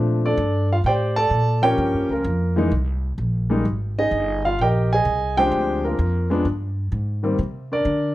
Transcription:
0.00 0.36 A#2 medium
0.00 0.35 F3 medium
0.00 0.35 A3 medium
0.00 0.35 C4 medium
0.00 0.25 D4 medium
0.26 0.68 D4 medium
0.26 0.68 A4 medium
0.26 0.68 D5 medium
0.37 0.83 G2 loud
0.73 0.78 F4 medium
0.73 0.78 F5 medium
0.84 1.30 A2 medium
0.84 1.15 G4 medium
0.84 1.16 C5 medium
0.84 1.15 D5 medium
0.84 0.93 G5 medium
1.16 1.61 A4 medium
1.16 1.60 D5 medium
1.16 1.65 A5 loud
1.30 1.76 A#2 medium
1.62 2.21 F3 medium
1.62 2.12 A#3 medium
1.62 2.22 C#4 medium
1.62 2.08 G4 medium
1.62 2.07 A#4 medium
1.62 2.07 C#5 medium
1.62 2.11 G5 loud
1.78 1.95 G2 medium
1.94 2.08 F2 medium
2.09 2.24 C#2 medium
2.09 2.55 F4 medium
2.09 2.54 A#4 medium
2.13 2.55 A#3 medium
2.24 2.70 F2 medium
2.56 2.70 E3 medium
2.56 2.71 G#3 medium
2.56 2.71 A#3 medium
2.56 2.71 D#4 medium
2.71 3.17 C2 medium
3.18 3.64 A#1 medium
3.50 3.64 G3 medium
3.50 3.64 G#3 medium
3.50 3.64 A#3 medium
3.50 3.64 D#4 medium
3.65 4.11 G#1 medium
3.99 4.41 D#4 medium
3.99 4.42 G#4 medium
3.99 4.41 D#5 loud
4.11 4.57 G1 medium
4.45 4.59 F4 medium
4.45 4.59 F5 medium
4.59 5.04 A#1 medium
4.59 4.90 G4 medium
4.59 4.90 A#4 medium
4.59 4.68 G5 medium
4.63 4.90 D#5 medium
4.93 5.36 G#4 medium
4.93 5.36 D#5 medium
4.93 5.39 G#5 loud
5.05 5.51 C2 medium
5.37 5.96 F3 medium
5.37 5.96 G#3 medium
5.37 5.96 C4 medium
5.37 5.96 D4 medium
5.37 5.82 G4 medium
5.37 5.82 C5 medium
5.37 5.85 G5 loud
5.52 5.97 D2 medium
5.85 6.28 A#3 medium
5.85 6.28 F4 medium
5.85 6.27 A#4 medium
5.99 6.44 F2 medium
6.30 6.44 F3 medium
6.30 6.44 G#3 medium
6.30 6.44 B3 medium
6.30 6.44 D4 medium
6.45 6.90 G2 medium
6.92 7.37 G#2 medium
7.23 7.37 D#3 medium
7.23 7.37 G3 medium
7.23 7.37 A#3 medium
7.23 7.38 C4 medium
7.39 7.84 C3 medium
7.72 8.14 D4 medium
7.72 8.15 A#4 medium
7.72 8.15 D5 medium
7.85 8.15 D3 loud

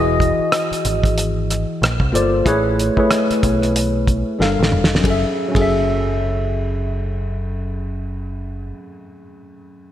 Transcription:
0.00 0.31 E1 medium
0.00 0.86 E3 medium
0.00 0.86 E4 medium
0.00 0.87 F#4 medium
0.00 0.87 G#4 medium
0.00 0.87 D#5 loud
0.20 kick medium
0.20 closed hi-hat soft
0.40 muted picked electric bass stroke soft
0.52 cross-stick loud
0.52 closed hi-hat medium
0.71 muted picked electric bass stroke soft
0.71 closed hi-hat soft
0.85 1.64 G#1 medium
0.85 closed hi-hat soft
1.04 kick medium
1.04 cross-stick soft
1.04 closed hi-hat soft
1.18 closed hi-hat medium
1.50 cross-stick soft
1.50 closed hi-hat soft
1.82 1.97 A#1 medium
1.82 cross-stick medium
1.82 closed hi-hat medium
2.00 2.11 C2 medium
2.00 kick medium
2.12 2.41 G1 medium
2.12 2.39 A#3 medium
2.12 2.39 F4 medium
2.12 2.40 A4 medium
2.12 2.40 C5 medium
2.12 2.40 D5 medium
2.12 closed hi-hat medium
2.45 2.89 A1 medium
2.45 2.83 A3 medium
2.45 2.83 E4 medium
2.45 2.84 G#4 medium
2.45 2.84 B4 medium
2.45 2.85 C#5 loud
2.45 kick medium
2.45 closed hi-hat medium
2.79 closed hi-hat soft
2.96 3.94 A3 medium
2.96 3.95 E4 medium
2.96 3.95 G#4 medium
2.96 3.95 B4 medium
2.96 3.96 C#5 medium
2.96 muted picked electric bass stroke soft
2.96 kick medium
3.11 cross-stick medium
3.11 closed hi-hat medium
3.31 muted picked electric bass stroke soft
3.31 cross-stick soft
3.31 closed hi-hat soft
3.43 4.23 B1 medium
3.43 kick medium
3.43 closed hi-hat medium
3.62 cross-stick soft
3.62 closed hi-hat soft
3.76 closed hi-hat medium
4.07 kick medium
4.07 closed hi-hat soft
4.39 4.56 G1 medium
4.39 4.93 G3 medium
4.39 4.93 D4 medium
4.39 4.93 A4 medium
4.39 4.94 A#4 medium
4.39 4.94 F5 medium
4.39 snare soft
4.59 4.70 A1 medium
4.59 snare medium
4.72 4.99 E1 medium
4.72 mid tom medium
4.84 snare medium
4.95 5.21 F#3 medium
4.95 snare medium
5.01 5.24 F#1 medium
5.01 5.22 C#4 medium
5.01 5.24 G#4 medium
5.01 kick medium
5.05 5.26 A4 medium
5.05 ride medium
5.10 5.27 E5 medium
5.48 8.64 F#3 medium
5.48 8.68 C#4 medium
5.55 8.72 F#1 medium
5.55 8.71 G#4 medium
5.55 8.74 A4 medium
5.55 kick medium
5.55 ride medium
5.62 8.78 E5 medium

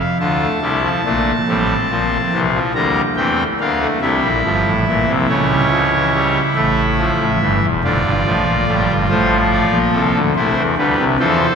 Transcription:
0.00 0.17 F5 medium
0.20 0.46 D2 medium
0.20 0.46 D3 medium
0.20 0.46 F4 medium
0.20 2.40 A5 medium
0.41 0.59 A3 medium
0.62 0.89 C2 medium
0.62 0.88 C3 medium
0.62 0.80 G3 medium
0.62 0.89 E4 medium
0.83 1.02 F3 medium
1.05 1.32 A#1 medium
1.05 1.32 A#2 medium
1.05 1.32 A3 medium
1.05 1.32 D4 medium
1.48 1.74 A1 medium
1.48 1.74 A2 medium
1.48 1.74 G3 medium
1.48 2.58 C4 medium
1.90 2.17 A#1 medium
1.90 2.17 A#2 medium
1.90 2.17 F3 medium
2.33 2.60 C2 medium
2.33 2.59 C3 medium
2.33 2.51 E3 medium
2.54 2.72 F3 medium
2.74 3.01 D2 medium
2.74 3.01 D3 medium
2.74 3.01 G3 medium
2.74 3.01 A#3 medium
2.74 3.01 A#5 medium
3.16 3.43 E2 medium
3.16 3.44 E3 medium
3.16 3.43 A3 medium
3.16 3.43 C4 medium
3.16 3.43 G5 medium
3.60 3.87 D2 medium
3.60 3.86 D3 medium
3.60 3.78 A#3 medium
3.60 3.87 D4 medium
3.60 3.87 F5 medium
3.80 3.99 A3 medium
4.01 4.20 C2 medium
4.01 4.20 C3 medium
4.01 4.28 G3 loud
4.01 7.30 E4 medium
4.01 5.11 E5 medium
4.23 4.42 A#1 medium
4.23 4.42 A#2 medium
4.44 4.63 G1 medium
4.44 4.63 G2 medium
4.44 4.71 F3 medium
4.66 4.84 A1 medium
4.66 4.84 A2 medium
4.87 5.05 A#1 medium
4.87 5.05 A#2 medium
4.87 5.13 E3 medium
5.08 5.26 C2 medium
5.08 5.26 C3 medium
5.29 6.38 C#2 medium
5.29 6.38 C#3 medium
5.29 5.47 A3 medium
5.29 6.38 C#5 medium
5.50 5.68 G3 medium
5.71 5.89 F3 medium
5.93 6.11 E3 medium
6.14 6.40 G3 medium
6.55 7.11 A1 medium
6.55 7.11 A2 medium
6.55 6.82 A3 loud
6.55 7.65 E5 medium
6.98 7.25 F3 medium
7.20 7.38 A1 medium
7.20 7.38 A2 medium
7.41 7.60 G1 medium
7.41 7.59 G2 medium
7.41 7.67 E3 medium
7.62 7.81 E1 medium
7.62 7.81 E2 medium
7.84 8.02 F1 medium
7.84 8.02 F2 medium
7.84 8.10 D3 medium
7.84 10.01 F4 medium
7.84 8.93 D5 medium
8.05 8.23 G1 medium
8.05 8.23 G2 medium
8.26 8.44 A1 medium
8.26 8.44 A2 medium
8.26 8.52 F3 loud
8.46 8.65 A#1 medium
8.46 8.65 A#2 medium
8.67 8.86 A1 medium
8.67 8.86 A2 medium
8.67 8.94 G3 medium
8.89 9.07 G1 medium
8.89 9.07 G2 medium
9.09 9.64 A1 medium
9.09 9.64 A2 medium
9.09 10.18 F3 loud
9.09 9.36 C5 loud
9.51 9.78 D5 medium
9.72 9.90 A#1 medium
9.72 9.90 A#2 medium
9.93 10.11 C2 medium
9.93 10.11 C3 medium
9.93 10.19 A4 medium
10.15 10.33 D2 medium
10.15 10.33 D3 medium
10.36 10.54 C2 medium
10.36 10.54 C3 medium
10.36 10.62 A3 medium
10.36 10.62 E4 medium
10.36 10.62 C5 medium
10.56 10.75 E2 medium
10.56 10.75 E3 medium
10.78 10.96 D2 loud
10.78 10.96 D3 loud
10.78 11.04 G3 medium
10.78 11.04 B4 medium
10.98 11.17 C2 medium
10.98 11.17 C3 medium
11.19 11.46 E2 loud
11.19 11.46 E3 loud
11.19 11.46 F3 medium
11.19 11.55 A4 medium
11.19 11.55 C5 medium

